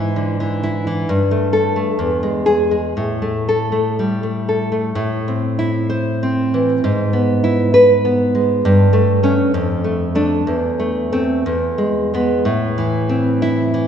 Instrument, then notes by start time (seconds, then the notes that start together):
nylon-string guitar
Already playing: G#2 E3
0.16 D3
0.40 E3
0.63 E4
0.87 E3
1.09 G2
1.31 A3
1.53 A4
1.76 A3
1.99 E2
2.23 G#3
2.46 G#4
2.71 G#3
2.97 A2
3.22 A3
3.49 A4
3.72 A3
3.99 G3
4.23 A3
4.49 A4
4.72 A3
4.95 A2
5.28 C4
5.59 E4
5.90 C5
6.23 C4
6.54 E3
6.84 G#2
7.13 B3
7.44 E4
7.74 B4
8.05 B3
8.35 G#3
8.65 G2
8.93 A3
9.23 A3 C#4
9.54 F2
9.84 A3
10.15 A3 D4
10.47 E2
10.80 A3
11.12 A3 C4
11.46 E2
11.78 G#3
12.14 G#3 B3
12.45 A2
12.78 E3
13.09 C4
13.42 E4
13.74 E3